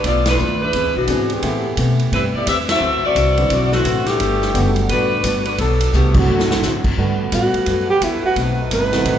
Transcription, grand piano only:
1.09 1.42 E3 medium
1.09 1.42 B3 medium
1.09 1.43 C4 soft
1.09 1.43 D4 soft
1.09 1.43 G#4 medium
1.43 2.39 E3 medium
1.43 2.39 A3 medium
1.43 2.39 B3 medium
1.43 2.39 E4 medium
1.43 2.39 G4 medium
3.38 3.83 D3 medium
3.38 3.83 F#3 soft
3.38 3.83 C4 soft
3.38 3.83 E4 medium
3.38 3.83 B4 medium
4.54 5.06 D3 medium
4.54 5.06 G3 medium
4.54 5.06 A3 medium
4.54 5.06 B3 medium
4.54 5.06 F#4 medium
6.16 6.60 D3 medium
6.16 6.60 F#3 medium
6.16 6.61 A3 medium
6.16 6.61 C4 medium
6.16 6.60 F#4 medium
6.99 7.94 D3 medium
6.99 7.94 G3 medium
6.99 7.94 A3 medium
6.99 7.94 B3 medium
6.99 7.94 F#4 medium
8.92 9.19 D#3 medium
8.92 9.19 A3 medium
8.92 9.19 B3 medium
8.92 9.19 C4 medium
8.92 9.19 F#4 medium

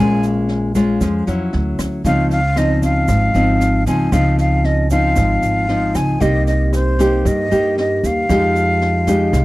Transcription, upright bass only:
0.00 0.97 A#1 loud
1.01 1.25 F2 medium
1.27 1.52 F2 medium
1.54 1.78 D2 medium
1.79 2.03 D2 medium
2.05 3.05 C#2 medium
3.08 3.33 G#1 medium
3.35 3.83 G#1 medium
3.86 4.11 C#2 medium
4.12 5.13 C#2 loud
5.16 5.41 G#1 medium
5.43 5.92 G#1 medium
5.95 6.19 C#2 medium
6.21 7.21 C2 loud
7.26 7.50 G2 medium
7.52 8.00 G2 medium
8.04 8.28 D#2 medium
8.29 9.29 F2 loud
9.33 9.45 C2 loud

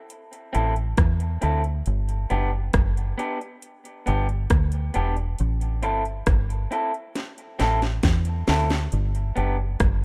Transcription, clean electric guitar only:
0.53 0.73 C4 medium
0.53 0.74 E4 medium
0.53 0.74 A4 medium
1.41 1.61 C4 medium
1.41 1.62 E4 medium
1.41 1.62 A4 medium
2.30 2.50 B3 medium
2.30 2.50 D4 medium
2.30 2.51 G4 loud
3.18 3.38 B3 medium
3.18 3.38 D4 medium
3.18 3.39 G4 medium
4.06 4.26 B3 medium
4.06 4.27 D4 medium
4.06 4.27 G4 loud
4.94 5.14 B3 medium
4.94 5.15 D4 medium
4.94 5.15 G4 medium
5.82 6.03 C4 medium
5.82 6.03 E4 medium
5.82 6.03 A4 medium
6.71 6.91 C4 medium
6.71 6.91 E4 medium
6.71 6.92 A4 medium
7.59 7.79 C4 medium
7.59 7.80 E4 medium
7.59 7.80 A4 loud
8.48 8.68 C4 medium
8.48 8.68 E4 medium
8.48 8.69 A4 loud
9.36 9.56 B3 medium
9.36 9.56 D4 medium
9.36 9.57 G4 medium

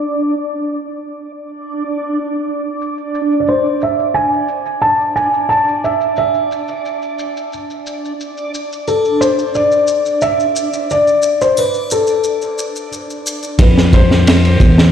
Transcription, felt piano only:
3.40 3.47 D5 medium
3.48 3.83 C5 medium
3.83 4.17 E5 medium
4.14 4.84 G#5 medium
4.82 5.14 A5 medium
5.16 5.51 G#5 medium
5.49 5.84 A5 medium
5.84 6.17 E5 medium
6.18 7.49 E5 medium
8.88 9.22 A4 medium
9.21 9.56 C5 medium
9.55 10.24 D5 medium
10.22 10.92 E5 medium
10.91 11.38 D5 medium
11.41 11.58 C5 medium
11.58 11.92 B4 medium
11.92 12.89 A4 medium
13.62 13.95 B4 medium
13.94 14.92 C5 loud

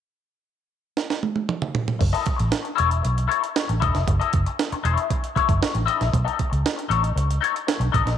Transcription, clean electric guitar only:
1.99 muted clean electric guitar stroke soft
2.13 2.23 E4 medium
2.13 2.24 A4 medium
2.13 2.25 D#5 medium
2.24 muted clean electric guitar stroke soft
2.36 muted clean electric guitar stroke soft
2.63 muted clean electric guitar stroke soft
2.76 2.96 E4 medium
2.76 2.89 A4 medium
2.76 2.88 C#5 medium
2.89 muted clean electric guitar stroke soft
3.02 muted clean electric guitar stroke soft
3.28 3.44 E4 medium
3.28 3.41 A4 medium
3.28 3.41 C#5 medium
3.42 muted clean electric guitar stroke soft
3.68 muted clean electric guitar stroke soft
3.80 4.00 E4 medium
3.80 3.95 A4 medium
3.80 3.94 D#5 medium
3.95 muted clean electric guitar stroke soft
4.07 muted clean electric guitar stroke soft
4.20 4.32 E4 medium
4.20 4.32 A4 medium
4.20 4.34 D#5 medium
4.33 muted clean electric guitar stroke soft
4.46 muted clean electric guitar stroke soft
4.73 muted clean electric guitar stroke soft
4.84 5.04 E4 medium
4.84 4.98 A4 medium
4.84 4.97 C#5 medium
4.98 muted clean electric guitar stroke soft
5.10 muted clean electric guitar stroke soft
5.36 5.51 E4 medium
5.36 5.49 A4 medium
5.36 5.48 C#5 medium
5.49 muted clean electric guitar stroke soft
5.61 muted clean electric guitar stroke soft
5.74 muted clean electric guitar stroke soft
5.86 6.06 E4 medium
5.86 6.00 A4 medium
5.86 5.99 D#5 medium
5.99 muted clean electric guitar stroke soft
6.12 muted clean electric guitar stroke soft
6.25 6.37 D#4 medium
6.25 6.37 A4 medium
6.25 6.38 D#5 medium
6.38 muted clean electric guitar stroke soft
6.50 muted clean electric guitar stroke soft
6.76 muted clean electric guitar stroke soft
6.89 7.09 D#4 medium
6.89 7.02 A4 medium
6.89 7.02 C#5 medium
7.03 muted clean electric guitar stroke medium
7.15 muted clean electric guitar stroke soft
7.41 7.56 D#4 medium
7.41 7.54 A4 medium
7.41 7.53 C#5 medium
7.54 muted clean electric guitar stroke soft
7.67 muted clean electric guitar stroke soft
7.79 muted clean electric guitar stroke soft
7.92 8.12 D#4 medium
7.92 8.06 A4 medium
7.92 8.05 D#5 medium
8.05 muted clean electric guitar stroke soft

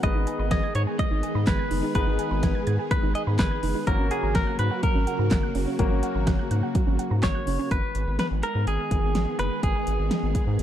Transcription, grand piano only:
0.03 1.91 B3 medium
0.03 1.91 D#4 medium
0.03 1.91 G#4 medium
0.03 1.91 B4 medium
1.95 3.83 B3 medium
1.95 3.83 D#4 medium
1.95 3.83 G#4 medium
1.95 3.83 B4 medium
3.87 5.75 A#3 medium
3.87 5.75 C#4 medium
3.87 5.75 F#4 medium
3.87 5.75 A#4 medium
5.79 7.67 A#3 medium
5.79 7.67 C#4 medium
5.79 7.67 F#4 medium
5.79 7.67 A#4 medium

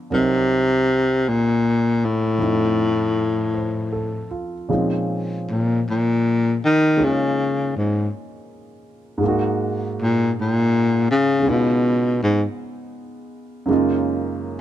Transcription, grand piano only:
0.00 0.11 F3 soft
0.00 0.12 A3 soft
0.00 0.13 B3 soft
0.10 2.38 C2 soft
0.10 2.38 C3 soft
0.10 2.39 F#3 soft
0.10 2.39 D#4 soft
0.10 2.39 A#4 soft
2.38 4.69 F2 soft
2.38 4.68 F3 soft
2.38 4.70 A3 soft
2.38 4.69 C4 soft
2.38 4.69 D#4 soft
3.54 4.27 C5 soft
3.92 4.52 A4 soft
4.31 4.91 F4 soft
4.69 9.20 A#2 soft
4.69 9.21 F3 soft
4.69 6.95 G#3 soft
4.69 9.21 C4 soft
4.69 6.96 C#4 soft
4.69 6.97 D#4 soft
6.97 9.19 G#3 soft
6.97 9.21 A#3 soft
6.97 9.21 C#4 soft
6.97 9.22 D#4 soft
6.97 9.22 F4 soft
9.18 11.42 G#2 medium
9.18 11.41 G#3 soft
9.23 11.45 A#3 soft
9.23 11.46 D#4 soft
9.28 11.48 F#4 medium
11.40 13.65 C#3 soft
11.40 13.67 G#3 soft
11.45 13.68 B3 soft
11.45 13.69 D#4 soft
11.50 13.70 F4 soft
13.66 14.61 F#2 medium
13.66 14.61 C#3 medium
13.66 14.61 G#3 medium
13.66 14.61 A#3 soft
13.70 14.61 D#4 soft
13.70 14.61 F4 medium

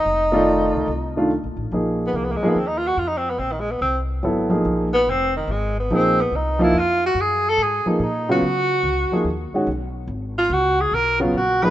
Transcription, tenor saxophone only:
0.00 1.33 D#4 medium
2.07 2.18 B3 medium
2.16 2.26 A#3 medium
2.25 2.33 B3 medium
2.32 2.38 A#3 medium
2.36 2.51 G#3 medium
2.49 2.60 B3 medium
2.58 2.69 C4 medium
2.67 2.79 D#4 medium
2.78 2.89 F4 medium
2.87 3.00 F#4 medium
2.98 3.09 F4 medium
3.08 3.19 D#4 medium
3.17 3.31 C4 medium
3.30 3.41 B3 medium
3.39 3.53 C4 medium
3.52 3.62 D#3 medium
3.60 3.73 G#3 medium
3.71 3.80 B3 medium
3.82 3.99 C4 medium
4.94 5.11 B3 loud
5.10 5.36 C4 loud
5.37 5.53 D#3 medium
5.52 5.78 G#3 medium
5.80 5.96 B3 medium
5.94 6.22 C4 loud
6.21 6.38 B3 medium
6.36 6.65 D#4 medium
6.63 6.80 E4 loud
6.79 7.05 F4 medium
7.06 7.22 F#4 medium
7.21 7.51 G#4 medium
7.49 7.65 A4 loud
7.63 7.89 G#4 medium
7.90 8.05 B3 soft
8.03 8.30 D#4 medium
8.31 9.23 F#4 loud
10.38 10.54 F4 loud
10.53 10.82 F#4 medium
10.81 10.96 G#4 loud
10.95 11.21 A#4 loud
11.21 11.37 C#4 medium
11.37 11.65 F#4 medium
11.63 11.70 B4 loud

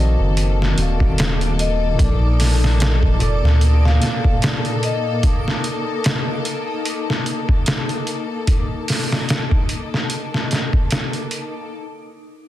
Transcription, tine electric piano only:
0.00 0.73 D#3 medium
0.00 0.76 C4 medium
0.00 2.00 D#4 medium
0.00 0.79 F#4 medium
0.00 2.01 D#5 loud
0.73 1.92 D#3 medium
0.73 1.94 C4 medium
0.79 1.95 F#4 medium
0.79 1.97 F5 medium
1.94 3.14 A#2 medium
1.94 3.15 A#3 medium
2.00 3.17 A4 medium
2.00 3.19 D5 medium
3.19 3.31 A#2 medium
3.19 3.32 A#3 medium
3.19 3.33 A4 medium
3.23 3.33 D5 loud
3.98 5.17 A#2 medium
3.98 5.18 A#3 medium
4.04 5.20 A4 medium
4.04 5.21 F5 medium

